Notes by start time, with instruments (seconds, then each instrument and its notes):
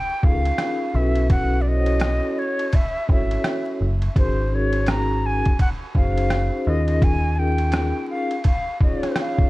Already playing: flute G5
0.22 picked electric bass C#2, vibraphone C#4 D#4 F4 G#4 A4, flute F5, kick
0.32 vibraphone A#4
0.45 ride
0.58 cross-stick, hi-hat pedal, ride
0.93 picked electric bass B1, vibraphone C#4 E4 F#4 A4 B4, flute E5
1.15 ride
1.30 flute F#5, kick, ride
1.61 vibraphone C#4 E4, flute D5
1.66 vibraphone F#4 A4 C5, flute D#5
1.74 vibraphone C#5
1.86 ride
2.00 cross-stick, hi-hat pedal, ride
2.39 flute C#5
2.59 ride
2.73 flute E5, kick, ride
3.07 picked electric bass G#1, vibraphone C#4 E4 F#4 A4 C#5, kick
3.12 flute E5
3.31 ride
3.44 cross-stick, hi-hat pedal, ride
3.81 picked electric bass F#1
4.02 ride
4.14 picked electric bass G#1, vibraphone C#4 D#4 F#4 G#4 A#4, flute C5, kick, ride
4.50 vibraphone C#4 D#4 F#4 G#4 A#4
4.55 flute C#5
4.73 ride
4.86 flute A#5, cross-stick, hi-hat pedal, ride
5.26 flute G#5
5.45 kick, ride
5.59 flute F#5, kick, ride
5.94 picked electric bass F#1, vibraphone C#4 D#4 F#4 G#4 C5, flute F5, kick
6.18 ride
6.30 cross-stick, hi-hat pedal, ride
6.65 picked electric bass D#2, vibraphone C#4 D#4 F4 G#4 A#4, flute D#5
6.88 ride
7.02 flute G#5, kick, ride
7.36 vibraphone C#4 D#4 F4 G#4 A#4, flute G5 G#5
7.58 ride
7.72 cross-stick, hi-hat pedal, ride
8.10 flute F5
8.31 ride
8.44 flute F5, kick, ride
8.80 vibraphone C#4 D#4 F4 G#4 C#5, flute D#5, kick
9.03 cross-stick, ride
9.16 cross-stick, hi-hat pedal, ride
9.20 flute F5
9.38 kick